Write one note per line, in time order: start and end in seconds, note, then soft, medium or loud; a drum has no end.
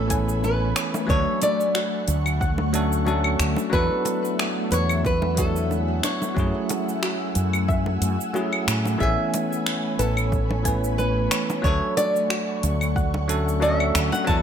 0.00 0.72 A1 medium
0.00 0.07 E3 medium
0.00 0.09 A3 medium
0.00 11.60 A3 medium
0.00 0.10 B3 medium
0.00 0.11 C#4 medium
0.00 1.11 G#4 loud
0.00 0.39 A4 medium
0.00 1.06 C#5 medium
0.00 1.05 G#5 medium
0.00 1.07 B5 medium
0.07 1.04 E3 medium
0.07 1.05 A3 medium
0.07 1.05 B3 medium
0.07 1.06 C#4 medium
0.07 0.42 G#5 medium
0.07 kick loud
0.07 closed hi-hat medium
0.07 cabasa medium
0.12 1.06 B4 medium
0.29 cabasa soft
0.44 1.06 B4 loud
0.44 high bongo medium
0.44 cabasa soft
0.76 1.08 C#5 medium
0.76 finger snap medium
0.76 closed hi-hat medium
0.76 cabasa medium
0.94 high bongo medium
0.94 cabasa soft
1.07 1.24 D2 medium
1.07 2.69 F#3 loud
1.07 2.70 A3 medium
1.07 2.71 D4 medium
1.07 1.42 C#5 loud
1.07 3.70 F#5 medium
1.07 3.70 C#6 medium
1.07 kick loud
1.07 cabasa soft
1.11 2.71 A4 loud
1.42 2.04 D5 loud
1.42 closed hi-hat medium
1.42 high bongo medium
1.42 cabasa medium
1.61 cabasa soft
1.75 1.94 F#4 medium
1.75 finger snap medium
1.75 cabasa soft
2.08 3.35 D2 medium
2.08 closed hi-hat medium
2.08 high bongo medium
2.08 cabasa medium
2.26 cabasa soft
2.26 claves medium
2.41 2.71 F#5 loud
2.41 kick loud
2.41 cabasa soft
2.58 high bongo medium
2.73 3.03 F#3 medium
2.73 3.03 A3 medium
2.73 3.03 C#4 medium
2.73 3.04 D4 medium
2.73 3.04 A4 medium
2.73 closed hi-hat medium
2.73 cabasa medium
2.93 cabasa soft
3.05 3.68 F#3 medium
3.05 3.69 A3 medium
3.05 3.69 C#4 medium
3.05 3.69 D4 medium
3.05 3.37 F#4 medium
3.05 3.69 A4 medium
3.05 high bongo medium
3.05 cabasa soft
3.24 claves medium
3.39 3.54 D2 loud
3.39 finger snap medium
3.39 closed hi-hat medium
3.39 cabasa medium
3.56 high bongo medium
3.56 cabasa soft
3.70 3.87 E2 medium
3.70 5.33 F#3 loud
3.70 5.33 B3 medium
3.70 5.34 D4 medium
3.70 4.03 F#4 medium
3.70 4.35 B4 loud
3.70 6.34 E5 medium
3.70 8.96 F#5 medium
3.70 kick loud
3.70 cabasa soft
3.74 5.35 E4 medium
3.74 5.35 A4 loud
4.05 closed hi-hat medium
4.05 high bongo medium
4.05 cabasa medium
4.25 cabasa soft
4.39 finger snap medium
4.39 cabasa soft
4.71 5.99 E2 medium
4.71 5.03 B4 loud
4.71 5.06 C#5 loud
4.71 closed hi-hat medium
4.71 high bongo medium
4.71 cabasa medium
4.89 cabasa soft
4.89 claves medium
5.05 5.39 B4 loud
5.05 kick loud
5.05 cabasa soft
5.22 high bongo medium
5.35 6.32 F#3 medium
5.35 6.32 B3 medium
5.35 6.33 D4 medium
5.35 6.33 E4 medium
5.35 5.69 F#4 medium
5.35 5.82 A4 loud
5.35 kick loud
5.35 closed hi-hat loud
5.35 cabasa medium
5.40 6.34 C#5 medium
5.56 cabasa soft
5.71 high bongo medium
5.71 cabasa soft
5.82 6.00 G#4 loud
6.03 6.35 D4 medium
6.03 8.31 C#5 medium
6.03 finger snap medium
6.03 closed hi-hat medium
6.03 cabasa medium
6.22 high bongo medium
6.22 cabasa soft
6.34 6.51 F#2 medium
6.34 7.97 F#3 medium
6.34 7.97 A3 medium
6.34 7.98 C#4 medium
6.34 7.98 E4 medium
6.34 11.60 G#5 medium
6.34 8.98 E6 medium
6.34 kick loud
6.34 cabasa soft
6.39 7.99 G#4 loud
6.69 closed hi-hat medium
6.69 high bongo medium
6.69 cabasa medium
6.89 cabasa soft
7.02 7.21 F#4 medium
7.02 finger snap medium
7.02 cabasa soft
7.35 8.00 F#2 medium
7.35 closed hi-hat medium
7.35 high bongo medium
7.35 cabasa medium
7.53 cabasa soft
7.53 claves medium
7.68 7.98 E5 loud
7.68 kick loud
7.68 cabasa soft
7.86 high bongo medium
8.01 8.16 F#2 medium
8.01 closed hi-hat medium
8.01 cabasa medium
8.21 cabasa soft
8.33 8.96 F#3 medium
8.33 8.96 A3 medium
8.33 8.97 C#4 medium
8.33 8.97 E4 medium
8.33 8.65 F#4 medium
8.33 8.97 G#4 medium
8.33 high bongo medium
8.33 cabasa soft
8.53 claves medium
8.67 8.95 A2 medium
8.67 finger snap medium
8.67 closed hi-hat loud
8.67 cabasa medium
8.85 high bongo medium
8.85 cabasa soft
8.98 9.15 A1 medium
8.98 10.60 E3 loud
8.98 10.61 A3 medium
8.98 10.61 B3 medium
8.98 10.62 C#4 medium
8.98 9.30 G#4 medium
8.98 11.61 C#5 medium
8.98 9.95 E5 medium
8.98 11.61 B5 medium
8.98 kick loud
9.02 10.63 G#5 loud
9.02 cabasa soft
9.34 closed hi-hat loud
9.34 high bongo loud
9.34 cabasa medium
9.53 cabasa soft
9.66 finger snap medium
9.66 cabasa soft
9.99 11.26 A1 medium
9.99 10.98 A4 medium
9.99 10.31 B4 loud
9.99 closed hi-hat medium
9.99 high bongo medium
9.99 cabasa medium
10.17 cabasa soft
10.17 claves medium
10.32 kick loud
10.32 cabasa soft
10.51 high bongo medium
10.63 11.59 E3 medium
10.63 11.60 A3 medium
10.63 11.61 B3 medium
10.63 11.61 C#4 medium
10.63 10.97 G#5 medium
10.63 kick loud
10.63 closed hi-hat loud
10.63 cabasa medium
10.68 11.62 B4 medium
10.84 cabasa soft
10.98 11.60 B4 medium
10.98 high bongo medium
10.98 cabasa soft
11.31 11.62 C#5 medium
11.31 finger snap medium
11.31 closed hi-hat medium
11.31 cabasa medium
11.50 high bongo medium
11.50 cabasa soft
11.62 11.79 D2 medium
11.62 13.24 F#3 loud
11.62 13.25 A3 medium
11.62 14.42 A3 medium
11.62 13.26 D4 medium
11.62 11.97 C#5 loud
11.62 14.42 F#5 medium
11.62 14.25 C#6 medium
11.62 kick loud
11.62 cabasa soft
11.67 13.27 A4 loud
11.97 13.62 D5 medium
11.97 closed hi-hat medium
11.97 high bongo medium
11.97 cabasa medium
12.16 cabasa soft
12.30 12.49 F#4 medium
12.30 finger snap medium
12.30 cabasa soft
12.63 13.90 D2 medium
12.63 closed hi-hat medium
12.63 high bongo medium
12.63 cabasa medium
12.81 cabasa soft
12.81 claves medium
12.96 13.26 F#5 medium
12.96 kick loud
12.96 cabasa soft
13.14 high bongo medium
13.27 13.57 F#3 medium
13.27 13.58 A3 medium
13.27 13.58 C#4 medium
13.27 13.59 D4 medium
13.27 13.59 A4 loud
13.27 closed hi-hat medium
13.27 cabasa medium
13.48 cabasa soft
13.60 14.23 F#3 medium
13.60 14.24 A3 medium
13.60 14.24 C#4 medium
13.60 14.24 D4 medium
13.60 13.93 A4 medium
13.60 14.24 A4 medium
13.60 14.12 E5 loud
13.60 high bongo medium
13.60 cabasa soft
13.80 claves medium
13.95 14.09 D2 loud
13.95 finger snap medium
13.95 closed hi-hat loud
13.95 cabasa medium
14.12 14.27 F#5 loud
14.12 high bongo medium
14.12 cabasa medium
14.25 14.42 E2 loud
14.25 14.42 F#3 loud
14.25 14.42 B3 medium
14.25 14.42 D4 medium
14.25 14.42 E4 medium
14.25 14.42 F#4 medium
14.25 14.42 E5 medium
14.25 14.36 A5 loud
14.25 kick loud
14.29 14.42 A4 loud
14.29 cabasa soft